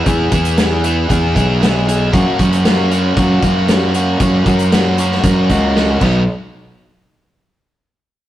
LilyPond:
<<
  \new Staff \with { instrumentName = "Overdriven electric guitar" } { \time 4/4 \key fis \mixolydian \tempo 4 = 116 <e b e' gis'>8 <e b e' gis'>8 <e b e' gis'>8 <e b e' gis'>8 <e b e' gis'>8 <e b e' gis'>8 <e b e' gis'>8 <e b e' gis'>8 | <ais cis' fis'>8 <ais cis' fis'>8 <ais cis' fis'>8 <ais cis' fis'>8 <ais cis' fis'>8 <ais cis' fis'>8 <ais cis' fis'>8 <ais cis' fis'>8 | <ais cis' fis'>8 <ais cis' fis'>8 <ais cis' fis'>8 <ais cis' fis'>8 <ais cis' fis'>8 <ais cis' fis'>8 <ais cis' fis'>8 <fis b dis'>8 | r1 | }
  \new Staff \with { instrumentName = "Fingered electric bass" } { \clef bass \time 4/4 \key fis \mixolydian e,8 e,4. e,8 b,,4. | fis,16 r16 fis,4. fis,8 fis,4. | fis,8 fis,4. fis,8 cis,4 b,,8 | r1 | }
  \new DrumStaff \with { instrumentName = "Drums" } \drummode { \time 4/4 <hh bd>8 <hh bd>16 hh16 <hh sn>8 hh8 <hh bd>8 <hh bd>8 <hh sn>8 hh8 | <hh bd>8 <hh bd>16 hh16 <hh sn>8 hh8 <hh bd>8 <hh bd>8 <hh sn>8 hh8 | <hh bd>8 <hh bd>16 hh16 <hh sn>8 hh16 sn16 <hh bd>8 <hh bd>8 sn8 <cymc bd>8 | r4 r4 r4 r4 | }
>>